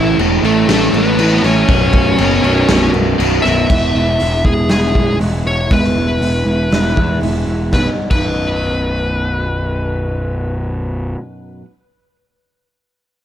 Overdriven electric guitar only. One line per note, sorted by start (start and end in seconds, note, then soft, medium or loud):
0.00 0.18 A2 loud
0.00 0.18 E3 loud
0.00 0.19 A3 loud
0.19 0.43 A2 medium
0.19 0.44 E3 loud
0.19 0.44 A3 medium
0.45 0.69 A2 medium
0.45 0.69 E3 medium
0.45 0.69 A3 loud
0.70 1.18 A2 loud
0.70 1.20 E3 loud
0.70 1.20 A3 loud
1.20 1.44 A2 medium
1.20 1.44 E3 loud
1.20 1.44 A3 medium
1.45 1.67 A2 medium
1.45 1.68 E3 medium
1.45 1.68 A3 medium
1.68 2.18 B1 medium
1.68 2.19 F#2 loud
1.68 2.19 B2 loud
2.19 2.42 B1 medium
2.19 2.42 F#2 medium
2.19 2.43 B2 medium
2.43 2.67 B1 medium
2.43 2.68 F#2 medium
2.43 2.69 B2 loud
2.69 3.17 B1 loud
2.69 3.17 F#2 loud
2.69 3.18 B2 loud
3.18 3.42 B1 medium
3.18 3.43 F#2 loud
3.18 3.43 B2 loud
3.43 3.67 B1 medium
3.43 3.67 F#2 loud
3.43 3.68 B2 medium